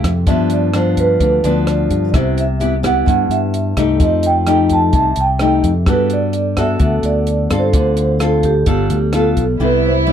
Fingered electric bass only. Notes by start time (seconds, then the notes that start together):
0.04 F2
0.27 G2
1.21 D2
1.44 D2
1.90 G2
2.14 C2
3.07 G2
3.29 G2
3.77 C2
4.00 F2
4.93 C2
5.17 C2
5.64 F2
5.86 G2
6.80 D2
7.03 D2
7.51 G2
7.73 D2
8.67 G1
8.90 D2
9.37 B1
9.60 C2